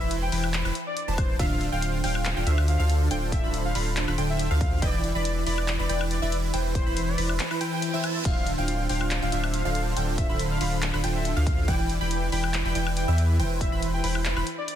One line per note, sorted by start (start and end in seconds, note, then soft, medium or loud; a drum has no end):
0.00 0.30 E1 loud
0.00 0.30 E3 medium
0.00 0.30 E4 medium
0.00 0.30 B4 medium
0.00 0.30 C5 medium
0.00 0.16 E5 loud
0.00 0.30 B5 medium
0.11 closed hi-hat medium
0.22 0.48 G5 medium
0.32 0.63 E1 loud
0.32 0.62 E3 medium
0.32 0.62 E4 medium
0.32 0.62 B4 medium
0.32 0.62 C5 medium
0.32 0.62 B5 medium
0.32 open hi-hat medium
0.44 high woodblock medium
0.54 clap loud
0.54 closed hi-hat medium
0.65 0.71 E1 loud
0.65 0.73 E3 medium
0.65 0.73 E4 medium
0.65 0.73 B4 medium
0.65 0.73 C5 medium
0.65 0.73 B5 medium
0.65 high woodblock medium
0.75 closed hi-hat medium
0.86 1.12 D5 loud
0.97 closed hi-hat medium
1.08 1.41 E1 loud
1.08 1.37 E3 medium
1.08 1.37 E4 medium
1.08 1.37 B4 medium
1.08 1.37 C5 medium
1.08 1.37 A5 medium
1.18 1.35 C5 medium
1.18 kick loud
1.18 closed hi-hat medium
1.18 high woodblock medium
1.39 1.70 D1 loud
1.39 1.70 D3 medium
1.39 1.70 D4 medium
1.39 1.70 F4 medium
1.39 1.70 C5 medium
1.39 1.70 E5 medium
1.39 1.70 E5 loud
1.39 1.66 F5 loud
1.39 kick loud
1.39 closed hi-hat medium
1.61 closed hi-hat medium
1.72 2.02 D1 loud
1.72 2.01 D3 medium
1.72 2.01 D4 medium
1.72 2.01 F4 medium
1.72 2.01 C5 medium
1.72 1.98 F5 loud
1.72 2.01 G5 medium
1.82 closed hi-hat medium
2.04 2.34 D1 loud
2.04 2.34 D3 medium
2.04 2.34 D4 medium
2.04 2.34 F4 medium
2.04 2.34 C5 medium
2.04 2.30 F5 loud
2.04 2.34 G5 medium
2.04 open hi-hat loud
2.15 high woodblock medium
2.25 clap loud
2.25 closed hi-hat medium
2.37 2.45 D1 loud
2.37 2.45 D3 medium
2.37 2.45 D4 medium
2.37 2.45 F4 medium
2.37 2.45 C5 medium
2.37 2.62 F5 loud
2.37 2.45 G5 medium
2.47 2.77 D2 medium
2.47 2.77 D3 loud
2.47 2.77 D4 medium
2.47 2.77 F4 medium
2.47 2.77 C5 medium
2.47 2.77 E5 loud
2.47 closed hi-hat medium
2.58 high woodblock medium
2.68 2.94 F5 loud
2.68 closed hi-hat medium
2.79 3.09 D2 loud
2.79 3.09 D3 loud
2.79 3.09 D4 medium
2.79 3.09 F4 medium
2.79 3.09 A4 medium
2.79 3.09 C5 medium
2.79 3.09 F5 loud
2.90 closed hi-hat medium
3.11 3.41 D1 loud
3.11 3.41 D3 medium
3.11 3.41 D4 medium
3.11 3.41 F4 medium
3.11 3.41 A4 medium
3.11 3.41 C5 medium
3.11 3.41 G5 loud
3.11 closed hi-hat medium
3.32 3.58 E5 loud
3.32 kick medium
3.32 closed hi-hat medium
3.44 3.73 D1 loud
3.44 3.73 D3 medium
3.44 3.73 D4 medium
3.44 3.73 F4 medium
3.44 3.73 A4 medium
3.44 3.73 C5 medium
3.44 3.73 B5 medium
3.54 closed hi-hat medium
3.65 3.91 F5 loud
3.75 4.06 D1 loud
3.75 4.05 D3 medium
3.75 4.05 D4 medium
3.75 4.05 F4 medium
3.75 4.05 A4 medium
3.75 4.05 C5 medium
3.75 4.05 B5 medium
3.75 open hi-hat loud
3.97 clap loud
3.97 closed hi-hat medium
4.08 4.16 D1 medium
4.08 4.16 D3 medium
4.08 4.16 D4 medium
4.08 4.16 F4 medium
4.08 4.16 A4 medium
4.08 4.16 C5 medium
4.08 4.16 B5 medium
4.08 high woodblock medium
4.18 4.49 D1 medium
4.18 4.48 D3 loud
4.18 4.48 D4 medium
4.18 4.48 F4 medium
4.18 4.48 A4 medium
4.18 4.48 C5 medium
4.18 4.48 G5 loud
4.18 closed hi-hat medium
4.29 4.55 E5 loud
4.39 closed hi-hat medium
4.51 4.80 D2 loud
4.51 4.80 D3 loud
4.51 4.80 D4 medium
4.51 4.80 F4 medium
4.51 4.80 A4 medium
4.51 4.80 C5 medium
4.51 4.80 F5 loud
4.61 4.84 F5 medium
4.61 kick loud
4.61 closed hi-hat medium
4.82 5.13 E1 loud
4.82 5.12 E3 medium
4.82 5.12 E4 medium
4.82 5.12 B4 medium
4.82 5.12 D5 medium
4.82 5.08 D5 loud
4.82 5.12 G5 loud
4.82 5.12 G5 medium
4.82 kick loud
4.82 closed hi-hat medium
5.04 closed hi-hat medium
5.15 5.45 E1 loud
5.15 5.44 E3 medium
5.15 5.44 E4 medium
5.15 5.44 B4 medium
5.15 5.44 D5 medium
5.15 5.41 D5 loud
5.15 5.44 B5 medium
5.25 closed hi-hat medium
5.47 5.77 E1 loud
5.47 5.77 E3 medium
5.47 5.77 E4 medium
5.47 5.77 B4 medium
5.47 5.77 D5 medium
5.47 5.73 D5 medium
5.47 5.77 B5 medium
5.47 open hi-hat loud
5.58 high woodblock medium
5.68 clap loud
5.68 closed hi-hat medium
5.79 5.88 E1 loud
5.79 5.87 E3 medium
5.79 5.87 E4 medium
5.79 5.87 B4 medium
5.79 5.87 D5 medium
5.79 6.05 D5 loud
5.79 5.87 B5 medium
5.89 6.20 E1 medium
5.89 6.20 E3 medium
5.89 6.20 E4 medium
5.89 6.20 B4 medium
5.89 6.20 D5 medium
5.89 6.20 G5 loud
5.89 closed hi-hat medium
6.01 high woodblock medium
6.11 6.37 D5 loud
6.11 closed hi-hat medium
6.22 6.52 E1 loud
6.22 6.51 E3 loud
6.22 6.51 E4 medium
6.22 6.51 B4 medium
6.22 6.51 D5 medium
6.22 6.51 E5 loud
6.32 closed hi-hat medium
6.54 6.84 E1 loud
6.54 6.84 E3 medium
6.54 6.84 E4 medium
6.54 6.84 B4 medium
6.54 6.84 C5 medium
6.54 6.84 G5 loud
6.54 closed hi-hat medium
6.75 7.10 C5 loud
6.75 kick medium
6.75 closed hi-hat medium
6.86 7.16 E1 medium
6.86 7.16 E3 medium
6.86 7.16 E4 medium
6.86 7.16 B4 medium
6.86 7.16 C5 medium
6.86 7.16 B5 medium
6.97 closed hi-hat medium
7.08 7.34 D5 medium
7.18 7.40 E1 loud
7.18 7.48 E3 medium
7.18 7.48 E4 medium
7.18 7.48 B4 medium
7.18 7.48 C5 medium
7.18 7.48 B5 medium
7.18 open hi-hat loud
7.29 high woodblock medium
7.39 clap loud
7.39 closed hi-hat medium
7.39 reverse cymbal medium
7.51 7.59 E3 medium
7.51 7.59 E4 medium
7.51 7.59 B4 medium
7.51 7.59 C5 medium
7.51 7.59 B5 medium
7.51 high woodblock medium
7.61 7.91 E3 loud
7.61 7.91 E4 medium
7.61 7.91 B4 medium
7.61 7.91 C5 medium
7.61 7.91 G5 loud
7.61 closed hi-hat medium
7.72 8.05 G5 loud
7.82 closed hi-hat medium
7.94 8.23 E3 loud
7.94 8.23 E4 medium
7.94 8.23 B4 medium
7.94 8.23 C5 medium
7.94 8.23 E5 loud
8.04 8.21 A5 medium
8.04 closed hi-hat medium
8.04 high woodblock medium
8.25 8.56 D1 loud
8.25 8.55 D3 medium
8.25 8.55 D4 medium
8.25 8.55 F4 medium
8.25 8.55 E5 loud
8.25 8.51 F5 loud
8.25 kick loud
8.25 closed hi-hat medium
8.25 crash medium
8.47 closed hi-hat medium
8.58 8.88 D1 loud
8.58 8.87 D3 medium
8.58 8.87 D4 medium
8.58 8.87 F4 medium
8.58 8.87 C5 medium
8.58 8.84 F5 loud
8.58 8.87 G5 medium
8.68 closed hi-hat medium
8.89 9.20 D1 loud
8.89 9.20 D3 medium
8.89 9.20 D4 medium
8.89 9.20 F4 medium
8.89 9.20 C5 medium
8.89 9.16 F5 loud
8.89 9.20 G5 medium
8.89 open hi-hat loud
9.01 high woodblock medium
9.11 clap loud
9.11 closed hi-hat medium
9.22 9.30 D1 medium
9.22 9.30 D3 medium
9.22 9.30 D4 medium
9.22 9.30 F4 medium
9.22 9.30 C5 medium
9.22 9.48 F5 loud
9.22 9.30 G5 medium
9.32 9.63 D1 medium
9.32 9.62 D3 loud
9.32 9.62 D4 medium
9.32 9.62 F4 medium
9.32 9.62 C5 medium
9.32 9.62 E5 loud
9.32 closed hi-hat medium
9.44 high woodblock medium
9.54 9.80 F5 loud
9.54 closed hi-hat medium
9.65 9.95 D1 loud
9.65 9.94 D3 loud
9.65 9.94 D4 medium
9.65 9.94 F4 medium
9.65 9.94 A4 medium
9.65 9.94 C5 medium
9.65 9.94 F5 loud
9.75 closed hi-hat medium
9.97 10.27 D1 loud
9.97 10.27 D3 medium
9.97 10.27 D4 medium
9.97 10.27 F4 medium
9.97 10.27 A4 medium
9.97 10.27 C5 medium
9.97 10.27 G5 loud
9.97 closed hi-hat medium
10.18 10.44 E5 loud
10.18 kick medium
10.18 closed hi-hat medium
10.29 10.59 D1 loud
10.29 10.58 D3 medium
10.29 10.58 D4 medium
10.29 10.58 F4 medium
10.29 10.58 A4 medium
10.29 10.58 C5 medium
10.29 10.58 B5 medium
10.39 closed hi-hat medium
10.51 10.76 F5 loud
10.61 10.91 D1 medium
10.61 10.91 D3 medium
10.61 10.91 D4 medium
10.61 10.91 F4 medium
10.61 10.91 A4 medium
10.61 10.91 C5 medium
10.61 10.91 B5 medium
10.61 open hi-hat loud
10.82 clap loud
10.82 closed hi-hat medium
10.94 11.02 D1 loud
10.94 11.02 D3 medium
10.94 11.02 D4 medium
10.94 11.02 F4 medium
10.94 11.02 A4 medium
10.94 11.02 C5 medium
10.94 11.02 B5 medium
10.94 high woodblock medium
11.04 11.34 D1 loud
11.04 11.34 D3 medium
11.04 11.34 D4 medium
11.04 11.34 F4 medium
11.04 11.34 A4 medium
11.04 11.34 C5 medium
11.04 11.34 G5 loud
11.04 closed hi-hat medium
11.15 11.41 E5 loud
11.25 closed hi-hat medium
11.37 11.70 D2 loud
11.37 11.66 D3 loud
11.37 11.66 D4 medium
11.37 11.66 F4 medium
11.37 11.66 A4 medium
11.37 11.66 C5 medium
11.37 11.66 F5 loud
11.47 11.70 F5 medium
11.47 kick loud
11.47 closed hi-hat medium
11.68 11.99 E1 loud
11.68 11.98 E3 medium
11.68 11.98 E4 medium
11.68 11.98 B4 medium
11.68 11.98 D5 medium
11.68 11.94 G5 loud
11.68 11.98 G5 loud
11.68 kick loud
11.68 closed hi-hat medium
11.89 closed hi-hat medium
12.01 12.30 E1 loud
12.01 12.30 E3 medium
12.01 12.30 E4 medium
12.01 12.30 B4 medium
12.01 12.30 D5 medium
12.01 12.26 G5 loud
12.01 12.30 B5 medium
12.11 closed hi-hat medium
12.32 12.63 E1 loud
12.32 12.62 E3 medium
12.32 12.62 E4 medium
12.32 12.62 B4 medium
12.32 12.62 D5 medium
12.32 12.58 G5 loud
12.32 12.62 B5 medium
12.32 open hi-hat medium
12.44 high woodblock medium
12.54 clap loud
12.54 closed hi-hat medium
12.65 12.73 E1 loud
12.65 12.73 E3 medium
12.65 12.73 E4 medium
12.65 12.73 B4 medium
12.65 12.73 D5 medium
12.65 12.91 G5 loud
12.65 12.73 B5 medium
12.75 13.06 E1 medium
12.75 13.05 E3 loud
12.75 13.05 E4 medium
12.75 13.05 B4 medium
12.75 13.05 D5 medium
12.75 13.05 G5 loud
12.75 closed hi-hat medium
12.87 high woodblock medium
12.97 13.23 G5 loud
12.97 closed hi-hat medium
13.08 13.41 E2 loud
13.08 13.37 E3 loud
13.08 13.37 E4 medium
13.08 13.37 B4 medium
13.08 13.37 D5 medium
13.08 13.37 E5 loud
13.18 closed hi-hat medium
13.39 13.70 E1 loud
13.39 13.70 E3 medium
13.39 13.70 E4 medium
13.39 13.70 B4 medium
13.39 13.70 C5 medium
13.39 13.70 G5 loud
13.39 closed hi-hat medium
13.61 13.87 E5 loud
13.61 kick medium
13.61 closed hi-hat medium
13.72 14.02 E1 loud
13.72 14.01 E3 medium
13.72 14.01 E4 medium
13.72 14.01 B4 medium
13.72 14.01 C5 medium
13.72 14.01 B5 medium
13.82 closed hi-hat medium
13.94 14.19 G5 loud
14.04 14.34 E1 medium
14.04 14.34 E3 medium
14.04 14.34 E4 medium
14.04 14.34 B4 medium
14.04 14.34 C5 medium
14.04 14.34 B5 medium
14.04 open hi-hat loud
14.15 high woodblock medium
14.25 clap loud
14.25 closed hi-hat medium
14.37 14.43 E1 loud
14.37 14.45 E3 medium
14.37 14.45 E4 medium
14.37 14.45 B4 medium
14.37 14.45 C5 medium
14.37 14.45 B5 medium
14.37 high woodblock medium
14.47 closed hi-hat medium
14.58 14.75 D5 loud
14.68 closed hi-hat medium